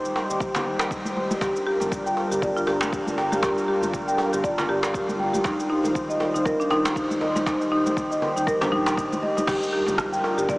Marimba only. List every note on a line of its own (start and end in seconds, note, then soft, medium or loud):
1.41 1.54 G4 medium
1.66 1.74 G4 medium
2.06 2.16 G5 medium
2.31 2.41 G4 medium
2.42 2.55 D5 medium
2.57 2.66 F4 medium
2.67 2.75 G4 loud
2.93 3.00 G4 medium
3.18 3.26 G5 medium
3.32 3.42 G4 medium
3.43 3.56 G4 medium
3.68 3.76 G4 medium
4.08 4.18 G5 medium
4.33 4.43 G4 medium
4.44 4.57 D5 medium
4.58 4.68 F4 loud
4.69 4.77 G4 medium
4.94 5.02 G4 medium
5.19 5.27 G5 medium
5.34 5.43 G4 medium
5.45 5.58 D#4 medium
5.70 5.78 D#4 medium
6.09 6.19 D#5 medium
6.34 6.44 D#4 medium
6.45 6.58 A#4 loud
6.60 6.70 D4 loud
6.71 6.78 D#4 loud
6.96 7.04 D#4 medium
7.21 7.29 D#5 medium
7.36 7.45 D#4 medium
7.47 7.59 D#4 medium
7.72 7.79 D#4 medium
8.11 8.21 D#5 medium
8.36 8.46 D#4 medium
8.47 8.60 A#4 loud
8.61 8.71 D4 medium
8.72 8.80 D#4 medium
8.97 9.05 D#4 medium
9.23 9.30 D#5 medium
9.37 9.47 D#4 medium
9.48 9.61 G4 medium
9.73 9.81 G4 medium
10.12 10.22 G5 medium
10.38 10.48 G4 medium
10.49 10.58 D5 medium